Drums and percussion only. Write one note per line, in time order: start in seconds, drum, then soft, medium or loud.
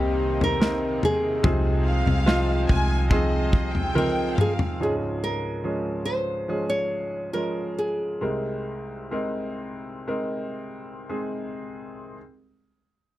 0.41 floor tom medium
0.62 snare medium
1.03 floor tom medium
1.44 kick loud
1.44 floor tom loud
2.07 floor tom medium
2.28 snare loud
2.69 kick medium
2.69 floor tom medium
3.11 kick loud
3.11 floor tom medium
3.53 kick medium
3.75 floor tom medium
3.96 high tom medium
4.38 mid tom medium
4.59 floor tom medium